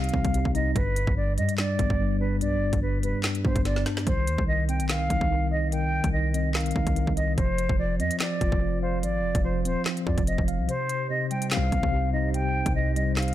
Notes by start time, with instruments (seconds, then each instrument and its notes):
Already playing: 808-style bass C2, tine electric piano C3 G3 C4 D#4, flute F5
0.04 closed hi-hat
0.09 closed hi-hat
0.13 808-style bass C2, tine electric piano C4, kick
0.25 808-style bass C2, kick, closed hi-hat
0.34 tine electric piano C3, closed hi-hat
0.45 808-style bass C2, kick
0.55 tine electric piano D#4, flute D#5, closed hi-hat
0.75 808-style bass G1, tine electric piano G2, flute B4, kick, closed hi-hat
0.96 closed hi-hat
1.07 808-style bass G1, kick
1.17 tine electric piano G2, flute D5
1.38 808-style bass G2, tine electric piano G3, flute D#5, closed hi-hat
1.49 closed hi-hat
1.58 tine electric piano G2, flute D5, snare, clap, closed hi-hat
1.79 808-style bass G1, tine electric piano B3, kick, closed hi-hat
1.90 808-style bass G1, kick
2.00 tine electric piano G2
2.20 tine electric piano D4, flute B4
2.41 808-style bass B1, tine electric piano G2, flute D5, closed hi-hat
2.57 808-style bass G1
2.73 808-style bass G1, kick, closed hi-hat
2.82 tine electric piano G2, flute B4
3.03 808-style bass F1, tine electric piano G3, flute B4, closed hi-hat
3.24 tine electric piano G2, snare, clap, closed hi-hat
3.35 closed hi-hat
3.44 808-style bass G2, tine electric piano B3, flute C5, kick
3.56 808-style bass G1, kick, closed hi-hat
3.65 tine electric piano G2, flute D5, snare, closed hi-hat
3.76 snare
3.86 tine electric piano D4, snare, closed hi-hat
3.97 snare
4.07 808-style bass C2, tine electric piano D#3, flute C5, kick, closed hi-hat
4.27 808-style bass D#2, closed hi-hat
4.38 808-style bass C2, kick
4.48 tine electric piano D#3, flute D#5
4.69 tine electric piano C4, flute G5, closed hi-hat
4.80 808-style bass B1, closed hi-hat
4.89 tine electric piano D#3, flute F5, snare, clap, closed hi-hat
4.95 808-style bass C2
5.10 808-style bass C2, tine electric piano D#4, kick, closed hi-hat
5.21 808-style bass C2, kick
5.31 tine electric piano D#3
5.51 tine electric piano D#5, flute D#5
5.72 tine electric piano D#3, flute G5, closed hi-hat
6.04 808-style bass C2, kick, closed hi-hat
6.12 tine electric piano D#3, flute D#5
6.33 tine electric piano C4, flute D#5, closed hi-hat
6.55 tine electric piano D#3, flute F5, snare, clap, closed hi-hat
6.61 closed hi-hat
6.66 closed hi-hat
6.71 closed hi-hat
6.76 808-style bass C2, tine electric piano D#4, kick
6.87 808-style bass C2, kick, closed hi-hat
6.96 tine electric piano D#3, closed hi-hat
7.07 808-style bass C2, kick
7.17 flute D#5, tine electric piano D#5, closed hi-hat
7.38 808-style bass F1, tine electric piano F3, flute C5, kick, closed hi-hat
7.58 closed hi-hat
7.69 808-style bass F1, kick
7.79 tine electric piano F3, flute D5
7.99 808-style bass F2, tine electric piano C4, flute D#5, closed hi-hat
8.11 closed hi-hat
8.20 tine electric piano F3, flute D5, snare, clap, closed hi-hat
8.41 808-style bass F1, tine electric piano F4, kick, closed hi-hat
8.52 808-style bass F1, kick
8.62 tine electric piano F3
8.83 flute C5, tine electric piano F5
9.03 808-style bass G#1, tine electric piano F3, flute D5, closed hi-hat
9.19 808-style bass F1
9.35 808-style bass F1, kick, closed hi-hat
9.44 tine electric piano F3, flute C5
9.65 808-style bass D#1, tine electric piano C4, flute C5, closed hi-hat
9.86 tine electric piano F3, snare, clap, closed hi-hat
9.97 closed hi-hat
10.06 808-style bass F2, tine electric piano F4, flute D5, kick
10.18 808-style bass F1, kick, closed hi-hat
10.27 tine electric piano F3, flute D#5, closed hi-hat
10.38 808-style bass F1, kick
10.48 tine electric piano F5, closed hi-hat
10.59 808-style bass C2
10.68 tine electric piano C3, glass harmonica D#4 G4 C5, flute C5, closed hi-hat
10.89 closed hi-hat
11.10 tine electric piano C3, flute D#5
11.31 tine electric piano G3, flute G5, closed hi-hat
11.42 closed hi-hat
11.51 tine electric piano C3, flute F5, snare, clap, closed hi-hat
11.57 808-style bass C2
11.72 808-style bass C2, tine electric piano C4, kick, closed hi-hat
11.83 808-style bass C2, kick
11.93 tine electric piano C3
12.13 tine electric piano D#4, flute D#5
12.34 tine electric piano C3, flute G5, closed hi-hat
12.66 808-style bass C2, kick, closed hi-hat
12.76 tine electric piano C3, flute D#5
12.96 tine electric piano G3, flute D#5, closed hi-hat
13.17 tine electric piano C3, flute F5, snare, clap, closed hi-hat
13.22 closed hi-hat
13.28 closed hi-hat